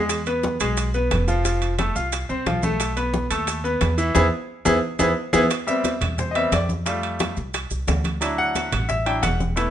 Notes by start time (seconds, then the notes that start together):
Already playing: E2 G#3 G#4
0.09 high bongo, high conga, high timbale, maracas
0.26 B3 B4, high conga, high timbale, maracas
0.43 high bongo, high conga, maracas
0.60 B1 G#3 G#4, high conga, high timbale, maracas
0.77 high bongo, high conga, high timbale, maracas
0.94 B3 B4, high conga, maracas
1.11 F1, high bongo, low bongo, high conga, high timbale, maracas
1.28 F3 F4, high conga, maracas
1.45 F3 F4, high bongo, high conga, high timbale, maracas
1.62 high bongo, high conga, high timbale, maracas
1.79 A3 A4, high bongo, high conga, high timbale, maracas
1.95 C2 F4 F5, high bongo, high conga, maracas
2.12 high bongo, high conga, high timbale, maracas
2.29 C2 C4 C5, high conga, maracas
2.46 B1 F3 F4, high bongo, low bongo, high conga, high timbale, maracas
2.63 A3 A4, high bongo, high conga, maracas
2.80 high bongo, high conga, high timbale, maracas
2.96 B3 B4, high conga, high timbale, maracas
3.14 high bongo, high conga, maracas
3.30 D#2 A3 A4, high conga, high timbale, maracas
3.47 high bongo, high conga, high timbale, maracas
3.64 B3 B4, high conga, maracas
3.81 E2, high bongo, low bongo, high conga, high timbale, low timbale, maracas
3.98 E3 E4, high conga, maracas
4.15 E2 B3 E4 G#4, high bongo, high conga, high timbale, maracas
4.65 E2 B3 E4 G#4, high bongo, high conga, high timbale, maracas
4.99 E2 B3 E4 G#4, high bongo, high conga, high timbale, maracas
5.33 E2 B3 E4 G#4, high bongo, high conga, high timbale, maracas
5.50 high bongo, high conga, high timbale, maracas
5.67 G3 B3 C4 E5, high bongo, high conga, maracas
5.84 high bongo, high conga, high timbale, low timbale, maracas
6.01 E2, high bongo, high conga, low conga, high timbale, maracas
6.18 C5, high bongo, high conga, low conga, maracas
6.31 D#5, high conga
6.35 G3 B3 C4 E5, high timbale
6.52 F2 D5, high bongo, low bongo, high conga, high timbale, low timbale, maracas
6.69 high bongo, high conga, maracas
6.86 G3 A3 F4, high bongo, high conga, high timbale, maracas
7.03 high conga, high timbale
7.20 high bongo, high conga, high timbale, low timbale, maracas
7.37 C2, high bongo, high conga, maracas
7.54 high bongo, high conga, high timbale, maracas
7.71 C2, high bongo, high conga, maracas
7.88 D2, high bongo, low bongo, high conga, high timbale, low timbale, maracas
8.04 high bongo, high conga, high timbale, maracas
8.21 F#3 D4 E4, high bongo, high conga, high timbale, maracas
8.38 F#5, high bongo, high conga
8.55 high bongo, high conga, high timbale, low timbale, maracas
8.72 A1, high bongo, high conga, low conga, high timbale, maracas
8.89 E5, high bongo, high conga, low conga, maracas
9.06 F#3 D4 E4 G5, high conga, high timbale
9.22 E1 F#5, high bongo, low bongo, high conga, high timbale, low timbale, maracas
9.40 high bongo, high conga, maracas
9.56 A3 B3 E4, high bongo, high timbale, maracas